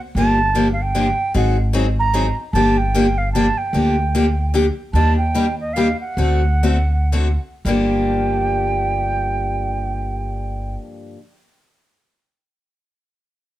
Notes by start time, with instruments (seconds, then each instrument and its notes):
0.15 upright bass G1, steel-string acoustic guitar D3 F3 A#3 D4 G4, flute A5
0.55 steel-string acoustic guitar D3 F3 A#3 D4 G4
0.73 flute F5
0.82 flute G5
0.95 steel-string acoustic guitar D3 F3 A#3 D4 G4
1.34 upright bass G#1, steel-string acoustic guitar D#3 F#3 C4 D#4 G#4, flute F#5
1.73 steel-string acoustic guitar D#3 F#3 C4 D#4 G#4
1.99 flute A#5
2.13 steel-string acoustic guitar D#3 F#3 C4 D#4 G#4
2.53 upright bass G1, steel-string acoustic guitar D3 F3 A#3 D4 G4, flute A5
2.77 flute G5
2.94 steel-string acoustic guitar D3 F3 A#3 D4 G4
3.18 flute F5
3.32 steel-string acoustic guitar D3 F3 A#3 D4 G4, flute A5
3.57 flute G5
3.73 upright bass D2, steel-string acoustic guitar D3 F3 A#3 D4 G4
4.15 steel-string acoustic guitar D3 F3 A#3 D4 G4
4.54 steel-string acoustic guitar D3 F3 A#3 D4 G4
4.93 upright bass D#2, steel-string acoustic guitar D#3 G3 A#3 D4 G4, flute A5
5.18 flute G5
5.34 steel-string acoustic guitar D#3 G3 A#3 D4 G4
5.60 flute D#5
5.73 steel-string acoustic guitar D#3 G3 A#3 D4, flute F5
5.77 steel-string acoustic guitar G4
6.00 flute F#5
6.17 upright bass D2, steel-string acoustic guitar D3 A3 C4 F#4 A4
6.63 steel-string acoustic guitar D3 A3 C4 F#4 A4
7.12 steel-string acoustic guitar D3 A3 C4 F#4 A4
7.65 upright bass G1, steel-string acoustic guitar G2 D3 F3 A#3 D4 G4, flute G5